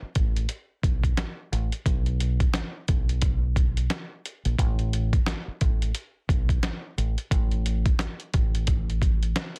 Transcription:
0.02 muted fingered electric bass stroke soft
0.15 0.45 A1 medium
0.15 kick medium
0.15 closed hi-hat medium
0.36 closed hi-hat medium
0.49 closed hi-hat loud
0.83 1.13 B1 medium
0.83 kick loud
0.83 closed hi-hat medium
1.04 kick medium
1.04 closed hi-hat soft
1.17 snare loud
1.17 snare medium
1.17 closed hi-hat medium
1.52 1.69 A1 medium
1.52 closed hi-hat medium
1.72 closed hi-hat medium
1.86 2.45 B1 loud
1.86 kick loud
1.86 closed hi-hat loud
2.06 closed hi-hat soft
2.20 closed hi-hat medium
2.40 kick medium
2.40 closed hi-hat medium
2.54 snare loud
2.54 snare medium
2.54 closed hi-hat medium
2.88 3.87 B1 medium
2.88 kick medium
2.88 closed hi-hat medium
3.09 closed hi-hat medium
3.22 kick medium
3.22 closed hi-hat loud
3.56 kick loud
3.56 closed hi-hat medium
3.77 closed hi-hat soft
3.90 snare loud
3.90 snare medium
3.90 closed hi-hat medium
4.26 closed hi-hat medium
4.45 4.57 A#1 medium
4.45 closed hi-hat medium
4.59 5.18 A1 loud
4.59 kick loud
4.59 closed hi-hat loud
4.79 closed hi-hat soft
4.93 closed hi-hat medium
5.13 kick medium
5.13 closed hi-hat medium
5.26 snare loud
5.26 snare medium
5.26 closed hi-hat medium
5.48 muted fingered electric bass stroke soft
5.61 5.91 A1 medium
5.61 kick medium
5.61 closed hi-hat medium
5.82 closed hi-hat medium
5.95 closed hi-hat loud
6.29 6.59 B1 medium
6.29 kick loud
6.29 closed hi-hat medium
6.49 kick medium
6.49 closed hi-hat soft
6.63 snare loud
6.63 snare medium
6.63 closed hi-hat medium
6.98 7.15 A1 medium
6.98 closed hi-hat medium
7.18 closed hi-hat medium
7.31 7.90 A1 loud
7.31 kick loud
7.31 closed hi-hat loud
7.51 closed hi-hat soft
7.66 closed hi-hat medium
7.86 kick medium
7.86 closed hi-hat medium
7.99 snare loud
7.99 snare medium
7.99 closed hi-hat medium
8.20 closed hi-hat soft
8.34 9.32 A1 medium
8.34 kick medium
8.34 closed hi-hat medium
8.55 closed hi-hat soft
8.67 kick medium
8.67 closed hi-hat loud
8.90 closed hi-hat soft
9.02 kick medium
9.02 closed hi-hat medium
9.23 closed hi-hat soft
9.36 snare loud
9.36 snare medium
9.36 closed hi-hat medium
9.56 closed hi-hat soft

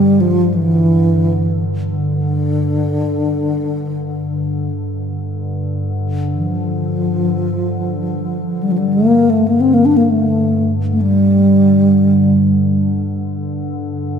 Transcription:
0.00 4.70 G2 medium
0.00 4.70 D3 medium
0.00 0.22 G3 medium
0.20 0.55 F3 medium
0.54 1.64 E3 medium
1.92 4.70 D3 medium
4.71 14.19 G2 medium
4.71 14.19 D3 medium
6.36 8.64 F3 medium
8.63 8.73 G3 medium
8.71 8.79 F3 medium
8.78 8.95 G3 medium
8.93 9.31 A#3 medium
9.30 9.49 A3 medium
9.48 9.62 A#3 medium
9.61 9.75 C4 medium
9.74 9.87 A#3 medium
9.85 9.98 D4 medium
9.97 10.12 A#3 medium
10.10 10.72 A3 medium
10.93 11.03 A3 soft
11.01 12.89 G3 medium

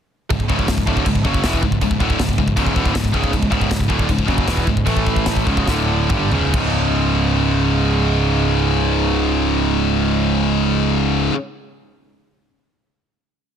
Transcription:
0.30 0.48 C#1 medium
0.30 0.46 C#2 medium
0.30 0.46 G#2 medium
0.30 kick medium
0.30 china medium
0.40 kick medium
0.48 0.67 C#1 medium
0.48 0.67 C#2 medium
0.48 0.67 G#2 medium
0.48 0.68 C#3 medium
0.48 kick medium
0.59 kick medium
0.68 0.86 C#1 medium
0.68 0.83 C#2 medium
0.68 0.83 G#2 medium
0.68 kick medium
0.68 snare loud
0.68 china medium
0.78 kick medium
0.87 1.05 D1 medium
0.87 1.05 D2 medium
0.87 1.06 A2 medium
0.87 1.06 D3 medium
0.87 kick medium
0.97 kick medium
1.06 1.23 C#1 medium
1.06 1.21 C#2 medium
1.06 1.21 G#2 medium
1.06 kick medium
1.06 china medium
1.15 kick medium
1.24 1.42 F#1 loud
1.24 1.43 F#2 loud
1.24 1.43 C#3 loud
1.24 1.44 F#3 loud
1.24 kick medium
1.34 kick loud
1.43 1.61 E1 medium
1.43 1.62 E2 loud
1.43 1.62 B2 loud
1.43 1.63 E3 loud
1.43 kick medium
1.43 snare loud
1.43 china medium
1.53 kick medium
1.63 1.80 C#1 medium
1.63 1.78 C#2 medium
1.63 1.78 G#2 medium
1.63 kick medium
1.72 kick medium
1.81 1.99 C#1 medium
1.81 1.97 C#2 medium
1.81 1.97 G#2 medium
1.81 kick medium
1.81 china medium
1.91 kick medium
2.00 2.18 D1 medium
2.00 2.19 D2 medium
2.00 2.19 A2 medium
2.00 2.19 D3 loud
2.00 kick medium
2.10 kick medium
2.19 2.37 C#1 medium
2.19 2.35 C#2 medium
2.19 2.35 G#2 medium
2.19 kick medium
2.19 snare loud
2.19 china medium
2.29 kick medium
2.38 2.56 C#1 medium
2.38 2.53 C#2 medium
2.38 2.53 G#2 medium
2.38 kick medium
2.48 kick medium
2.56 2.75 C#1 medium
2.56 2.75 C#2 loud
2.56 2.75 G#2 loud
2.56 2.76 C#3 loud
2.56 kick medium
2.56 china medium
2.67 kick medium
2.75 2.93 D1 loud
2.75 2.94 D2 loud
2.75 2.94 A2 medium
2.75 2.94 D3 loud
2.75 kick medium
2.85 kick loud
2.95 3.13 C#1 medium
2.95 3.10 C#2 medium
2.95 3.10 G#2 medium
2.95 kick medium
2.95 snare loud
2.95 china medium
3.05 kick medium
3.13 3.32 C#1 loud
3.13 3.30 C#2 medium
3.13 3.31 G#2 medium
3.13 3.32 C#3 loud
3.13 kick medium
3.24 kick medium
3.31 3.51 C#1 medium
3.31 3.47 C#2 medium
3.31 3.47 G#2 medium
3.31 kick medium
3.31 china medium
3.43 kick medium
3.50 3.69 C#1 loud
3.50 3.69 C#2 medium
3.50 3.69 G#2 medium
3.50 3.70 C#3 medium
3.50 kick medium
3.61 kick medium
3.70 3.89 C#1 medium
3.70 3.86 C#2 medium
3.70 3.86 G#2 medium
3.70 kick medium
3.70 snare loud
3.70 china medium
3.80 kick medium
3.88 4.08 D1 loud
3.88 4.08 D2 medium
3.88 4.08 A2 medium
3.88 4.08 D3 medium
3.88 kick medium
3.99 kick medium
4.08 4.27 C#1 medium
4.08 4.24 C#2 medium
4.08 4.24 G#2 medium
4.08 kick medium
4.08 china medium
4.19 kick medium
4.28 4.46 F#1 loud
4.28 4.47 F#2 medium
4.28 4.47 C#3 medium
4.28 4.47 F#3 loud
4.28 kick medium
4.38 kick loud
4.47 4.66 E1 loud
4.47 4.66 E2 loud
4.47 4.67 B2 loud
4.47 4.67 E3 loud
4.47 kick medium
4.47 snare loud
4.47 china medium
4.57 kick medium
4.67 4.86 C#1 medium
4.67 4.83 C#2 medium
4.67 4.83 G#2 medium
4.67 kick medium
4.77 kick medium
4.86 5.43 A1 medium
4.86 5.46 A2 medium
4.86 5.46 E3 loud
4.86 5.47 A3 loud
4.86 kick medium
4.86 china medium
4.97 kick medium
5.07 kick medium
5.16 kick medium
5.26 kick medium
5.26 snare loud
5.26 china medium
5.37 kick medium
5.46 5.66 C#1 loud
5.46 5.66 C#2 medium
5.46 5.66 G#2 loud
5.46 5.67 C#3 medium
5.46 kick medium
5.57 kick medium
5.66 6.07 D1 medium
5.66 6.09 D2 medium
5.66 6.09 A2 medium
5.66 6.09 D3 loud
5.66 kick medium
5.66 snare medium
6.09 6.30 G1 medium
6.09 6.30 G2 medium
6.09 6.31 D3 loud
6.09 6.31 G3 loud
6.09 kick medium
6.09 mid tom medium
6.30 6.53 C#1 medium
6.30 6.52 C#2 loud
6.30 6.53 G#2 loud
6.30 6.53 C#3 loud
6.30 floor tom medium
6.53 11.28 C#1 medium
6.53 11.31 C#2 loud
6.53 11.33 G#2 loud
6.53 11.35 C#3 loud
6.53 kick loud
6.53 crash medium

